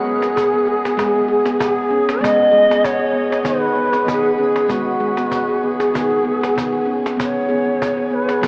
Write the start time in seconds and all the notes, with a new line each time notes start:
Already playing: G#3 G#4
0.05 B3, cajon slap
0.22 cajon slap
0.36 G#4, cajon bass
0.53 B3
0.67 G#4, cajon slap
0.85 B3, cajon slap
0.97 G#3 G#4, cajon bass, cajon slap
1.15 B3
1.28 G#4, cajon slap
1.46 B3, cajon slap
1.59 G#4, cajon bass
1.91 C#4, cajon slap
2.09 cajon slap
2.21 G#3 B3 D#5, cajon bass
2.40 cajon slap
2.52 G#3 G#4
2.69 B3, cajon slap
2.84 C#5, cajon bass
3.00 G#4, cajon slap
3.13 B3, cajon slap
3.30 G#4, cajon slap
3.43 D#3 B3 B4, cajon bass
3.60 G#4
3.75 B3, cajon slap
3.92 G#4, cajon slap
4.06 D#3 B3 G#4, cajon bass
4.23 G#4
4.38 C#4 G#4
4.56 cajon slap
4.68 G#3 B3 F#4, cajon bass
5.00 G#3 G#4
5.17 B3, cajon slap
5.31 cajon bass
5.49 G#4, cajon slap
5.62 B3 G#4, cajon slap
5.80 G#4, cajon slap
5.94 D#3 B3, cajon bass
6.10 G#4
6.25 B3, cajon slap
6.41 G#4, cajon slap
6.55 D#3 B3, cajon bass
6.72 G#4
6.86 C#4
7.06 cajon slap
7.17 B3, cajon bass
7.21 C#5
7.38 cajon slap
7.49 B3 G#4
7.66 B3
7.82 cajon bass
7.97 G#4, cajon slap
8.11 B3 B4, cajon slap
8.28 G#4, cajon slap
8.41 F#3 B3, cajon bass